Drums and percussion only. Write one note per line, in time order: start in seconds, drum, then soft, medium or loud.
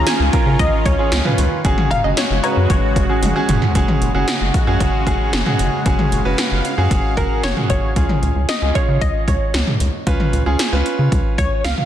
0.07 snare loud
0.07 closed hi-hat medium
0.33 kick medium
0.33 closed hi-hat medium
0.59 kick loud
0.59 closed hi-hat medium
0.86 kick medium
0.86 closed hi-hat medium
1.12 snare loud
1.12 closed hi-hat medium
1.25 mid tom medium
1.38 closed hi-hat medium
1.65 kick loud
1.65 closed hi-hat medium
1.78 mid tom loud
1.91 closed hi-hat medium
1.91 mid tom loud
1.91 cowbell medium
2.17 snare loud
2.17 closed hi-hat medium
2.44 closed hi-hat medium
2.44 cowbell medium
2.70 kick loud
2.70 closed hi-hat medium
2.96 kick medium
2.96 closed hi-hat medium
3.23 closed hi-hat medium
3.23 high tom medium
3.49 closed hi-hat medium
3.49 mid tom loud
3.62 floor tom loud
3.75 kick loud
3.75 closed hi-hat medium
3.88 mid tom medium
4.02 closed hi-hat medium
4.28 snare loud
4.28 closed hi-hat medium
4.54 kick medium
4.54 closed hi-hat medium
4.80 kick medium
4.80 closed hi-hat medium
5.07 kick medium
5.07 closed hi-hat medium
5.33 snare loud
5.33 closed hi-hat medium
5.46 mid tom medium
5.59 closed hi-hat medium
5.86 kick loud
5.86 closed hi-hat medium
5.99 mid tom medium
6.12 closed hi-hat medium
6.38 snare loud
6.38 closed hi-hat medium
6.65 closed hi-hat medium
6.91 kick medium
6.91 closed hi-hat medium
7.17 kick medium
7.17 closed hi-hat medium
7.43 snare loud
7.43 closed hi-hat medium
7.57 mid tom medium
7.70 kick medium
7.70 closed hi-hat medium
7.96 kick loud
7.96 closed hi-hat medium
8.09 mid tom medium
8.23 closed hi-hat medium
8.49 snare loud
8.49 closed hi-hat medium
8.75 kick medium
8.75 closed hi-hat medium
9.01 kick medium
9.01 closed hi-hat medium
9.28 kick medium
9.28 closed hi-hat medium
9.54 snare loud
9.54 closed hi-hat medium
9.67 mid tom medium
9.80 closed hi-hat medium
10.07 kick loud
10.07 closed hi-hat medium
10.20 mid tom medium
10.33 closed hi-hat medium
10.59 snare loud
10.59 closed hi-hat medium
10.86 closed hi-hat medium
11.12 kick medium
11.12 closed hi-hat medium
11.38 kick medium
11.38 closed hi-hat medium
11.65 snare loud
11.65 closed hi-hat medium
11.78 mid tom medium